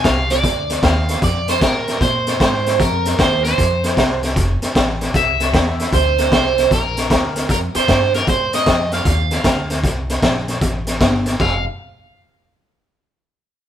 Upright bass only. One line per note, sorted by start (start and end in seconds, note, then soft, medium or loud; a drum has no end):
0.05 0.43 C2 medium
0.44 0.82 D2 medium
0.83 1.21 D#2 medium
1.22 1.60 F2 medium
1.61 2.00 A2 medium
2.01 2.39 A#2 medium
2.40 2.78 G#2 medium
2.80 3.18 F2 medium
3.19 3.57 D#2 medium
3.58 3.96 F2 medium
3.97 4.35 C2 medium
4.36 4.60 F1 medium
4.62 muted upright bass stroke soft
4.75 5.13 A1 medium
5.14 5.52 C2 medium
5.53 5.91 E2 medium
5.93 6.31 D2 medium
6.32 6.70 C2 medium
6.71 7.09 A#1 medium
7.11 7.48 D2 medium
7.49 7.73 F2 medium
7.75 muted upright bass stroke soft
7.89 8.27 G2 medium
8.27 8.65 A2 medium
8.67 9.05 F2 medium
9.05 9.44 D#2 medium
9.44 9.83 D2 medium
9.84 10.22 C2 medium
10.23 10.61 A#1 medium
10.61 11.00 A1 medium
11.01 11.39 G1 medium
11.40 11.64 F1 medium